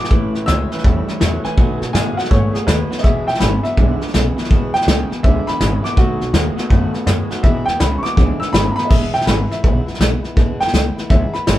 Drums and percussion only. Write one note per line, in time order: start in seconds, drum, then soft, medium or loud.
0.04 snare soft
0.11 kick loud
0.11 snare soft
0.35 snare soft
0.48 snare loud
0.48 hi-hat pedal medium
0.72 snare soft
0.78 snare soft
0.84 kick loud
0.84 snare soft
1.08 snare soft
1.21 snare loud
1.21 hi-hat pedal medium
1.45 snare soft
1.57 kick loud
1.57 snare soft
1.82 snare soft
1.95 snare loud
1.95 hi-hat pedal medium
2.19 snare soft
2.25 snare soft
2.31 kick loud
2.31 snare soft
2.55 snare soft
2.68 snare loud
2.68 hi-hat pedal medium
2.92 snare soft
2.98 snare soft
3.04 kick loud
3.04 snare soft
3.28 snare soft
3.34 snare soft
3.40 snare loud
3.40 hi-hat pedal medium
3.65 snare soft
3.77 kick loud
3.77 snare soft
4.01 snare soft
4.08 snare soft
4.14 snare loud
4.14 hi-hat pedal medium
4.38 snare soft
4.44 snare soft
4.51 kick loud
4.51 snare soft
4.75 snare soft
4.81 snare soft
4.88 snare loud
4.88 hi-hat pedal medium
5.12 snare soft
5.24 kick loud
5.24 snare soft
5.48 snare soft
5.61 snare loud
5.61 hi-hat pedal medium
5.85 snare soft
5.97 kick loud
5.97 snare soft
6.21 snare soft
6.34 snare loud
6.34 hi-hat pedal medium
6.58 snare soft
6.70 kick loud
6.70 snare soft
6.94 snare soft
7.07 snare loud
7.07 hi-hat pedal medium
7.31 snare soft
7.43 kick loud
7.43 snare soft
7.68 snare soft
7.80 snare loud
7.80 hi-hat pedal medium
8.05 snare soft
8.17 kick loud
8.17 snare soft
8.42 snare soft
8.54 snare loud
8.54 hi-hat pedal medium
8.78 snare soft
8.90 kick loud
8.90 snare soft
8.90 crash loud
9.15 snare soft
9.21 snare soft
9.27 snare loud
9.27 hi-hat pedal medium
9.51 snare soft
9.64 kick loud
9.64 snare soft
9.88 snare soft
9.94 snare soft
10.01 snare loud
10.01 hi-hat pedal medium
10.24 snare soft
10.37 kick loud
10.37 snare soft
10.61 snare soft
10.67 snare soft
10.74 snare loud
10.74 hi-hat pedal medium
10.98 snare soft
11.10 kick loud
11.10 snare soft
11.34 snare soft
11.47 snare loud
11.47 hi-hat pedal medium